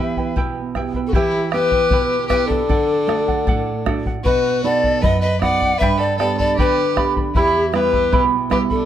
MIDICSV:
0, 0, Header, 1, 6, 480
1, 0, Start_track
1, 0, Key_signature, 1, "minor"
1, 0, Tempo, 775194
1, 712, Time_signature, 2, 2, 24, 8
1, 5482, End_track
2, 0, Start_track
2, 0, Title_t, "Charango"
2, 0, Program_c, 0, 24
2, 0, Note_on_c, 0, 64, 54
2, 0, Note_on_c, 0, 71, 53
2, 0, Note_on_c, 0, 76, 53
2, 0, Note_on_c, 0, 79, 59
2, 102, Note_off_c, 0, 79, 0
2, 107, Note_off_c, 0, 71, 0
2, 109, Note_off_c, 0, 76, 0
2, 109, Note_on_c, 0, 79, 50
2, 110, Note_off_c, 0, 64, 0
2, 114, Note_on_c, 0, 71, 48
2, 118, Note_on_c, 0, 64, 43
2, 222, Note_off_c, 0, 64, 0
2, 226, Note_off_c, 0, 71, 0
2, 226, Note_on_c, 0, 76, 74
2, 227, Note_off_c, 0, 79, 0
2, 227, Note_on_c, 0, 67, 70
2, 229, Note_on_c, 0, 64, 76
2, 233, Note_on_c, 0, 71, 82
2, 234, Note_on_c, 0, 79, 78
2, 462, Note_off_c, 0, 76, 0
2, 465, Note_off_c, 0, 64, 0
2, 466, Note_off_c, 0, 79, 0
2, 467, Note_off_c, 0, 71, 0
2, 469, Note_off_c, 0, 67, 0
2, 469, Note_on_c, 0, 76, 62
2, 472, Note_on_c, 0, 64, 61
2, 474, Note_on_c, 0, 71, 65
2, 474, Note_on_c, 0, 79, 69
2, 577, Note_off_c, 0, 79, 0
2, 585, Note_on_c, 0, 79, 50
2, 586, Note_off_c, 0, 71, 0
2, 590, Note_off_c, 0, 76, 0
2, 591, Note_off_c, 0, 64, 0
2, 594, Note_on_c, 0, 71, 49
2, 598, Note_on_c, 0, 64, 43
2, 708, Note_off_c, 0, 64, 0
2, 708, Note_off_c, 0, 71, 0
2, 708, Note_off_c, 0, 79, 0
2, 711, Note_on_c, 0, 67, 75
2, 714, Note_on_c, 0, 76, 76
2, 715, Note_on_c, 0, 64, 81
2, 715, Note_on_c, 0, 71, 78
2, 716, Note_on_c, 0, 79, 85
2, 946, Note_off_c, 0, 76, 0
2, 951, Note_off_c, 0, 64, 0
2, 952, Note_off_c, 0, 67, 0
2, 952, Note_off_c, 0, 71, 0
2, 952, Note_off_c, 0, 79, 0
2, 953, Note_on_c, 0, 76, 56
2, 958, Note_on_c, 0, 64, 60
2, 959, Note_on_c, 0, 71, 61
2, 959, Note_on_c, 0, 79, 70
2, 1063, Note_off_c, 0, 79, 0
2, 1067, Note_off_c, 0, 71, 0
2, 1070, Note_on_c, 0, 79, 51
2, 1071, Note_off_c, 0, 64, 0
2, 1073, Note_off_c, 0, 76, 0
2, 1074, Note_on_c, 0, 71, 44
2, 1079, Note_on_c, 0, 64, 42
2, 1188, Note_off_c, 0, 64, 0
2, 1188, Note_off_c, 0, 79, 0
2, 1189, Note_off_c, 0, 71, 0
2, 1189, Note_on_c, 0, 67, 71
2, 1190, Note_on_c, 0, 76, 72
2, 1195, Note_on_c, 0, 79, 80
2, 1196, Note_on_c, 0, 64, 76
2, 1196, Note_on_c, 0, 71, 78
2, 1423, Note_off_c, 0, 76, 0
2, 1427, Note_off_c, 0, 64, 0
2, 1430, Note_off_c, 0, 71, 0
2, 1430, Note_on_c, 0, 76, 57
2, 1431, Note_off_c, 0, 67, 0
2, 1434, Note_off_c, 0, 79, 0
2, 1435, Note_on_c, 0, 64, 65
2, 1438, Note_on_c, 0, 71, 60
2, 1441, Note_on_c, 0, 79, 69
2, 1544, Note_off_c, 0, 79, 0
2, 1549, Note_off_c, 0, 71, 0
2, 1551, Note_off_c, 0, 76, 0
2, 1552, Note_on_c, 0, 79, 55
2, 1554, Note_off_c, 0, 64, 0
2, 1557, Note_on_c, 0, 71, 47
2, 1561, Note_on_c, 0, 64, 39
2, 1663, Note_off_c, 0, 71, 0
2, 1665, Note_on_c, 0, 69, 78
2, 1670, Note_on_c, 0, 74, 78
2, 1671, Note_off_c, 0, 79, 0
2, 1673, Note_on_c, 0, 78, 82
2, 1677, Note_off_c, 0, 64, 0
2, 1905, Note_off_c, 0, 69, 0
2, 1909, Note_off_c, 0, 74, 0
2, 1913, Note_off_c, 0, 78, 0
2, 1913, Note_on_c, 0, 69, 54
2, 1916, Note_on_c, 0, 74, 60
2, 1921, Note_on_c, 0, 78, 62
2, 2023, Note_off_c, 0, 78, 0
2, 2030, Note_on_c, 0, 78, 56
2, 2031, Note_off_c, 0, 74, 0
2, 2033, Note_off_c, 0, 69, 0
2, 2039, Note_on_c, 0, 74, 43
2, 2145, Note_off_c, 0, 74, 0
2, 2148, Note_on_c, 0, 69, 76
2, 2149, Note_off_c, 0, 78, 0
2, 2154, Note_on_c, 0, 74, 88
2, 2157, Note_on_c, 0, 78, 96
2, 2386, Note_off_c, 0, 69, 0
2, 2394, Note_off_c, 0, 74, 0
2, 2394, Note_on_c, 0, 69, 67
2, 2395, Note_off_c, 0, 78, 0
2, 2400, Note_on_c, 0, 74, 72
2, 2404, Note_on_c, 0, 78, 67
2, 2511, Note_off_c, 0, 78, 0
2, 2513, Note_off_c, 0, 69, 0
2, 2517, Note_off_c, 0, 74, 0
2, 2518, Note_on_c, 0, 78, 48
2, 2526, Note_on_c, 0, 74, 40
2, 2636, Note_off_c, 0, 78, 0
2, 2636, Note_on_c, 0, 71, 75
2, 2637, Note_off_c, 0, 74, 0
2, 2639, Note_on_c, 0, 75, 85
2, 2644, Note_on_c, 0, 78, 89
2, 2869, Note_off_c, 0, 71, 0
2, 2874, Note_off_c, 0, 75, 0
2, 2877, Note_on_c, 0, 71, 55
2, 2878, Note_off_c, 0, 78, 0
2, 2881, Note_on_c, 0, 75, 68
2, 2886, Note_on_c, 0, 78, 64
2, 2994, Note_off_c, 0, 78, 0
2, 2995, Note_off_c, 0, 71, 0
2, 2997, Note_off_c, 0, 75, 0
2, 3002, Note_on_c, 0, 78, 57
2, 3010, Note_on_c, 0, 75, 39
2, 3115, Note_off_c, 0, 75, 0
2, 3117, Note_off_c, 0, 78, 0
2, 3121, Note_on_c, 0, 71, 78
2, 3123, Note_on_c, 0, 75, 85
2, 3130, Note_on_c, 0, 78, 84
2, 3349, Note_off_c, 0, 71, 0
2, 3355, Note_off_c, 0, 75, 0
2, 3356, Note_on_c, 0, 71, 63
2, 3358, Note_off_c, 0, 78, 0
2, 3362, Note_on_c, 0, 75, 62
2, 3365, Note_on_c, 0, 78, 66
2, 3474, Note_off_c, 0, 71, 0
2, 3475, Note_off_c, 0, 78, 0
2, 3477, Note_off_c, 0, 75, 0
2, 3483, Note_on_c, 0, 78, 54
2, 3493, Note_on_c, 0, 75, 41
2, 3597, Note_off_c, 0, 78, 0
2, 3602, Note_off_c, 0, 75, 0
2, 3603, Note_on_c, 0, 67, 73
2, 3604, Note_on_c, 0, 79, 80
2, 3605, Note_on_c, 0, 71, 85
2, 3605, Note_on_c, 0, 74, 85
2, 3610, Note_on_c, 0, 83, 87
2, 3831, Note_off_c, 0, 79, 0
2, 3834, Note_off_c, 0, 71, 0
2, 3837, Note_off_c, 0, 67, 0
2, 3837, Note_off_c, 0, 74, 0
2, 3838, Note_off_c, 0, 83, 0
2, 3838, Note_on_c, 0, 79, 62
2, 3841, Note_on_c, 0, 71, 62
2, 3844, Note_on_c, 0, 74, 65
2, 3845, Note_on_c, 0, 83, 65
2, 3948, Note_off_c, 0, 83, 0
2, 3954, Note_off_c, 0, 74, 0
2, 3955, Note_off_c, 0, 79, 0
2, 3955, Note_on_c, 0, 83, 48
2, 3956, Note_off_c, 0, 71, 0
2, 3961, Note_on_c, 0, 74, 44
2, 3965, Note_on_c, 0, 71, 43
2, 4073, Note_off_c, 0, 83, 0
2, 4076, Note_off_c, 0, 74, 0
2, 4078, Note_off_c, 0, 71, 0
2, 4080, Note_on_c, 0, 67, 75
2, 4081, Note_on_c, 0, 79, 76
2, 4084, Note_on_c, 0, 71, 75
2, 4084, Note_on_c, 0, 74, 73
2, 4084, Note_on_c, 0, 83, 86
2, 4304, Note_off_c, 0, 79, 0
2, 4309, Note_off_c, 0, 71, 0
2, 4312, Note_on_c, 0, 79, 58
2, 4313, Note_off_c, 0, 74, 0
2, 4313, Note_off_c, 0, 83, 0
2, 4315, Note_off_c, 0, 67, 0
2, 4316, Note_on_c, 0, 71, 62
2, 4320, Note_on_c, 0, 74, 63
2, 4320, Note_on_c, 0, 83, 69
2, 4430, Note_off_c, 0, 83, 0
2, 4431, Note_off_c, 0, 79, 0
2, 4433, Note_off_c, 0, 71, 0
2, 4435, Note_off_c, 0, 74, 0
2, 4437, Note_on_c, 0, 83, 52
2, 4443, Note_on_c, 0, 74, 47
2, 4445, Note_on_c, 0, 71, 43
2, 4548, Note_off_c, 0, 71, 0
2, 4554, Note_off_c, 0, 83, 0
2, 4556, Note_off_c, 0, 74, 0
2, 4556, Note_on_c, 0, 71, 73
2, 4559, Note_on_c, 0, 76, 75
2, 4559, Note_on_c, 0, 79, 73
2, 4560, Note_on_c, 0, 64, 80
2, 4561, Note_on_c, 0, 83, 80
2, 4788, Note_off_c, 0, 79, 0
2, 4791, Note_off_c, 0, 64, 0
2, 4792, Note_off_c, 0, 71, 0
2, 4794, Note_off_c, 0, 76, 0
2, 4795, Note_off_c, 0, 83, 0
2, 4796, Note_on_c, 0, 79, 55
2, 4798, Note_on_c, 0, 64, 61
2, 4802, Note_on_c, 0, 76, 66
2, 4802, Note_on_c, 0, 83, 62
2, 4904, Note_off_c, 0, 83, 0
2, 4908, Note_off_c, 0, 76, 0
2, 4912, Note_on_c, 0, 83, 52
2, 4913, Note_off_c, 0, 79, 0
2, 4914, Note_off_c, 0, 64, 0
2, 4915, Note_on_c, 0, 76, 46
2, 4920, Note_on_c, 0, 64, 39
2, 5024, Note_off_c, 0, 64, 0
2, 5025, Note_off_c, 0, 76, 0
2, 5028, Note_off_c, 0, 83, 0
2, 5030, Note_on_c, 0, 71, 74
2, 5031, Note_on_c, 0, 64, 84
2, 5031, Note_on_c, 0, 79, 75
2, 5032, Note_on_c, 0, 76, 74
2, 5035, Note_on_c, 0, 83, 86
2, 5256, Note_off_c, 0, 79, 0
2, 5261, Note_off_c, 0, 64, 0
2, 5264, Note_on_c, 0, 79, 58
2, 5265, Note_off_c, 0, 76, 0
2, 5266, Note_off_c, 0, 83, 0
2, 5269, Note_off_c, 0, 71, 0
2, 5269, Note_on_c, 0, 64, 60
2, 5272, Note_on_c, 0, 76, 61
2, 5273, Note_on_c, 0, 83, 72
2, 5379, Note_off_c, 0, 83, 0
2, 5384, Note_off_c, 0, 76, 0
2, 5386, Note_off_c, 0, 79, 0
2, 5386, Note_on_c, 0, 83, 55
2, 5388, Note_off_c, 0, 64, 0
2, 5391, Note_on_c, 0, 76, 47
2, 5396, Note_on_c, 0, 64, 41
2, 5482, Note_off_c, 0, 64, 0
2, 5482, Note_off_c, 0, 76, 0
2, 5482, Note_off_c, 0, 83, 0
2, 5482, End_track
3, 0, Start_track
3, 0, Title_t, "Pan flute"
3, 0, Program_c, 1, 75
3, 0, Note_on_c, 1, 76, 86
3, 231, Note_off_c, 1, 76, 0
3, 664, Note_on_c, 1, 69, 61
3, 704, Note_on_c, 1, 67, 77
3, 713, Note_off_c, 1, 69, 0
3, 941, Note_off_c, 1, 67, 0
3, 945, Note_on_c, 1, 71, 106
3, 1404, Note_off_c, 1, 71, 0
3, 1414, Note_on_c, 1, 71, 90
3, 1531, Note_on_c, 1, 69, 90
3, 1540, Note_off_c, 1, 71, 0
3, 2382, Note_off_c, 1, 69, 0
3, 2627, Note_on_c, 1, 71, 93
3, 2871, Note_on_c, 1, 74, 104
3, 2880, Note_off_c, 1, 71, 0
3, 3109, Note_on_c, 1, 75, 90
3, 3118, Note_off_c, 1, 74, 0
3, 3222, Note_off_c, 1, 75, 0
3, 3226, Note_on_c, 1, 75, 88
3, 3341, Note_off_c, 1, 75, 0
3, 3347, Note_on_c, 1, 78, 106
3, 3585, Note_on_c, 1, 76, 98
3, 3594, Note_off_c, 1, 78, 0
3, 3708, Note_on_c, 1, 74, 88
3, 3717, Note_off_c, 1, 76, 0
3, 3830, Note_off_c, 1, 74, 0
3, 3833, Note_on_c, 1, 74, 100
3, 3944, Note_off_c, 1, 74, 0
3, 3957, Note_on_c, 1, 74, 88
3, 4066, Note_off_c, 1, 74, 0
3, 4085, Note_on_c, 1, 71, 84
3, 4413, Note_off_c, 1, 71, 0
3, 4561, Note_on_c, 1, 67, 76
3, 4779, Note_off_c, 1, 67, 0
3, 4794, Note_on_c, 1, 71, 90
3, 5081, Note_off_c, 1, 71, 0
3, 5271, Note_on_c, 1, 71, 78
3, 5308, Note_off_c, 1, 71, 0
3, 5390, Note_on_c, 1, 69, 86
3, 5482, Note_off_c, 1, 69, 0
3, 5482, End_track
4, 0, Start_track
4, 0, Title_t, "Fiddle"
4, 0, Program_c, 2, 110
4, 0, Note_on_c, 2, 71, 70
4, 232, Note_off_c, 2, 71, 0
4, 671, Note_on_c, 2, 66, 50
4, 702, Note_on_c, 2, 64, 79
4, 712, Note_off_c, 2, 66, 0
4, 935, Note_off_c, 2, 64, 0
4, 939, Note_on_c, 2, 67, 82
4, 1401, Note_off_c, 2, 67, 0
4, 1411, Note_on_c, 2, 67, 82
4, 1533, Note_on_c, 2, 62, 76
4, 1543, Note_off_c, 2, 67, 0
4, 2383, Note_off_c, 2, 62, 0
4, 2625, Note_on_c, 2, 66, 80
4, 2877, Note_on_c, 2, 69, 76
4, 2886, Note_off_c, 2, 66, 0
4, 3108, Note_on_c, 2, 71, 80
4, 3118, Note_off_c, 2, 69, 0
4, 3218, Note_off_c, 2, 71, 0
4, 3222, Note_on_c, 2, 71, 72
4, 3338, Note_off_c, 2, 71, 0
4, 3348, Note_on_c, 2, 74, 94
4, 3577, Note_on_c, 2, 71, 87
4, 3586, Note_off_c, 2, 74, 0
4, 3703, Note_on_c, 2, 69, 78
4, 3712, Note_off_c, 2, 71, 0
4, 3816, Note_off_c, 2, 69, 0
4, 3820, Note_on_c, 2, 69, 76
4, 3937, Note_off_c, 2, 69, 0
4, 3944, Note_on_c, 2, 69, 76
4, 4056, Note_off_c, 2, 69, 0
4, 4059, Note_on_c, 2, 67, 81
4, 4400, Note_off_c, 2, 67, 0
4, 4545, Note_on_c, 2, 64, 73
4, 4770, Note_off_c, 2, 64, 0
4, 4788, Note_on_c, 2, 67, 69
4, 5078, Note_off_c, 2, 67, 0
4, 5274, Note_on_c, 2, 67, 74
4, 5327, Note_off_c, 2, 67, 0
4, 5402, Note_on_c, 2, 62, 68
4, 5482, Note_off_c, 2, 62, 0
4, 5482, End_track
5, 0, Start_track
5, 0, Title_t, "Nylon-string guitar"
5, 0, Program_c, 3, 24
5, 0, Note_on_c, 3, 52, 62
5, 0, Note_on_c, 3, 59, 48
5, 0, Note_on_c, 3, 64, 44
5, 0, Note_on_c, 3, 67, 51
5, 209, Note_off_c, 3, 52, 0
5, 222, Note_on_c, 3, 47, 61
5, 370, Note_off_c, 3, 59, 0
5, 373, Note_off_c, 3, 64, 0
5, 373, Note_off_c, 3, 67, 0
5, 465, Note_on_c, 3, 59, 43
5, 469, Note_on_c, 3, 64, 41
5, 473, Note_on_c, 3, 67, 46
5, 660, Note_off_c, 3, 59, 0
5, 662, Note_off_c, 3, 64, 0
5, 665, Note_off_c, 3, 67, 0
5, 693, Note_off_c, 3, 47, 0
5, 711, Note_on_c, 3, 52, 67
5, 949, Note_on_c, 3, 59, 50
5, 952, Note_on_c, 3, 64, 45
5, 954, Note_on_c, 3, 67, 54
5, 1178, Note_off_c, 3, 52, 0
5, 1184, Note_on_c, 3, 47, 65
5, 1335, Note_off_c, 3, 59, 0
5, 1336, Note_off_c, 3, 64, 0
5, 1338, Note_off_c, 3, 67, 0
5, 1421, Note_on_c, 3, 59, 46
5, 1424, Note_on_c, 3, 64, 45
5, 1428, Note_on_c, 3, 67, 52
5, 1618, Note_off_c, 3, 59, 0
5, 1620, Note_off_c, 3, 64, 0
5, 1621, Note_off_c, 3, 67, 0
5, 1654, Note_off_c, 3, 47, 0
5, 1668, Note_on_c, 3, 50, 65
5, 1902, Note_on_c, 3, 57, 52
5, 1906, Note_on_c, 3, 62, 49
5, 1910, Note_on_c, 3, 66, 55
5, 2136, Note_off_c, 3, 50, 0
5, 2148, Note_on_c, 3, 45, 65
5, 2291, Note_off_c, 3, 57, 0
5, 2293, Note_off_c, 3, 62, 0
5, 2294, Note_off_c, 3, 66, 0
5, 2389, Note_on_c, 3, 57, 46
5, 2393, Note_on_c, 3, 66, 55
5, 2395, Note_on_c, 3, 62, 47
5, 2583, Note_off_c, 3, 57, 0
5, 2584, Note_off_c, 3, 62, 0
5, 2585, Note_off_c, 3, 66, 0
5, 2616, Note_off_c, 3, 45, 0
5, 2636, Note_on_c, 3, 47, 69
5, 2870, Note_on_c, 3, 59, 51
5, 2873, Note_on_c, 3, 63, 47
5, 2878, Note_on_c, 3, 66, 58
5, 3100, Note_off_c, 3, 47, 0
5, 3105, Note_on_c, 3, 42, 68
5, 3255, Note_off_c, 3, 59, 0
5, 3257, Note_off_c, 3, 63, 0
5, 3259, Note_off_c, 3, 66, 0
5, 3347, Note_on_c, 3, 59, 46
5, 3353, Note_on_c, 3, 63, 47
5, 3354, Note_on_c, 3, 66, 52
5, 3541, Note_off_c, 3, 59, 0
5, 3544, Note_off_c, 3, 66, 0
5, 3545, Note_off_c, 3, 63, 0
5, 3574, Note_off_c, 3, 42, 0
5, 3596, Note_on_c, 3, 43, 71
5, 3831, Note_on_c, 3, 59, 49
5, 3835, Note_on_c, 3, 62, 46
5, 3840, Note_on_c, 3, 67, 54
5, 4059, Note_off_c, 3, 43, 0
5, 4072, Note_on_c, 3, 50, 67
5, 4215, Note_off_c, 3, 59, 0
5, 4217, Note_off_c, 3, 62, 0
5, 4220, Note_off_c, 3, 67, 0
5, 4309, Note_on_c, 3, 59, 45
5, 4310, Note_on_c, 3, 62, 45
5, 4313, Note_on_c, 3, 67, 55
5, 4501, Note_off_c, 3, 59, 0
5, 4502, Note_off_c, 3, 62, 0
5, 4504, Note_off_c, 3, 67, 0
5, 4537, Note_off_c, 3, 50, 0
5, 4554, Note_on_c, 3, 40, 68
5, 4784, Note_on_c, 3, 55, 47
5, 4788, Note_on_c, 3, 59, 45
5, 4790, Note_on_c, 3, 64, 57
5, 5017, Note_off_c, 3, 40, 0
5, 5030, Note_on_c, 3, 47, 63
5, 5170, Note_off_c, 3, 55, 0
5, 5171, Note_off_c, 3, 59, 0
5, 5173, Note_off_c, 3, 64, 0
5, 5261, Note_on_c, 3, 55, 49
5, 5262, Note_on_c, 3, 59, 47
5, 5264, Note_on_c, 3, 64, 54
5, 5456, Note_off_c, 3, 55, 0
5, 5456, Note_off_c, 3, 59, 0
5, 5456, Note_off_c, 3, 64, 0
5, 5482, Note_off_c, 3, 47, 0
5, 5482, End_track
6, 0, Start_track
6, 0, Title_t, "Bombo"
6, 104, Note_on_c, 9, 43, 49
6, 166, Note_off_c, 9, 43, 0
6, 225, Note_on_c, 9, 43, 68
6, 287, Note_off_c, 9, 43, 0
6, 465, Note_on_c, 9, 37, 44
6, 465, Note_on_c, 9, 43, 41
6, 527, Note_off_c, 9, 37, 0
6, 527, Note_off_c, 9, 43, 0
6, 581, Note_on_c, 9, 43, 44
6, 643, Note_off_c, 9, 43, 0
6, 700, Note_on_c, 9, 43, 85
6, 762, Note_off_c, 9, 43, 0
6, 941, Note_on_c, 9, 37, 63
6, 1003, Note_off_c, 9, 37, 0
6, 1062, Note_on_c, 9, 43, 59
6, 1124, Note_off_c, 9, 43, 0
6, 1180, Note_on_c, 9, 43, 83
6, 1242, Note_off_c, 9, 43, 0
6, 1425, Note_on_c, 9, 37, 58
6, 1425, Note_on_c, 9, 43, 61
6, 1487, Note_off_c, 9, 37, 0
6, 1487, Note_off_c, 9, 43, 0
6, 1549, Note_on_c, 9, 43, 60
6, 1611, Note_off_c, 9, 43, 0
6, 1669, Note_on_c, 9, 43, 74
6, 1731, Note_off_c, 9, 43, 0
6, 1913, Note_on_c, 9, 37, 59
6, 1975, Note_off_c, 9, 37, 0
6, 2032, Note_on_c, 9, 43, 54
6, 2094, Note_off_c, 9, 43, 0
6, 2150, Note_on_c, 9, 43, 74
6, 2212, Note_off_c, 9, 43, 0
6, 2392, Note_on_c, 9, 37, 57
6, 2392, Note_on_c, 9, 43, 58
6, 2454, Note_off_c, 9, 37, 0
6, 2454, Note_off_c, 9, 43, 0
6, 2512, Note_on_c, 9, 43, 57
6, 2574, Note_off_c, 9, 43, 0
6, 2634, Note_on_c, 9, 43, 67
6, 2695, Note_off_c, 9, 43, 0
6, 2995, Note_on_c, 9, 43, 51
6, 3057, Note_off_c, 9, 43, 0
6, 3116, Note_on_c, 9, 43, 76
6, 3178, Note_off_c, 9, 43, 0
6, 3356, Note_on_c, 9, 37, 52
6, 3356, Note_on_c, 9, 43, 51
6, 3418, Note_off_c, 9, 37, 0
6, 3418, Note_off_c, 9, 43, 0
6, 3477, Note_on_c, 9, 43, 50
6, 3539, Note_off_c, 9, 43, 0
6, 3599, Note_on_c, 9, 43, 66
6, 3661, Note_off_c, 9, 43, 0
6, 3839, Note_on_c, 9, 37, 53
6, 3901, Note_off_c, 9, 37, 0
6, 3962, Note_on_c, 9, 43, 53
6, 4023, Note_off_c, 9, 43, 0
6, 4078, Note_on_c, 9, 43, 78
6, 4140, Note_off_c, 9, 43, 0
6, 4316, Note_on_c, 9, 37, 61
6, 4316, Note_on_c, 9, 43, 58
6, 4378, Note_off_c, 9, 37, 0
6, 4378, Note_off_c, 9, 43, 0
6, 4437, Note_on_c, 9, 43, 65
6, 4498, Note_off_c, 9, 43, 0
6, 4551, Note_on_c, 9, 43, 75
6, 4613, Note_off_c, 9, 43, 0
6, 4790, Note_on_c, 9, 37, 59
6, 4852, Note_off_c, 9, 37, 0
6, 4912, Note_on_c, 9, 43, 59
6, 4974, Note_off_c, 9, 43, 0
6, 5033, Note_on_c, 9, 43, 83
6, 5095, Note_off_c, 9, 43, 0
6, 5271, Note_on_c, 9, 37, 55
6, 5271, Note_on_c, 9, 43, 56
6, 5333, Note_off_c, 9, 37, 0
6, 5333, Note_off_c, 9, 43, 0
6, 5389, Note_on_c, 9, 43, 57
6, 5451, Note_off_c, 9, 43, 0
6, 5482, End_track
0, 0, End_of_file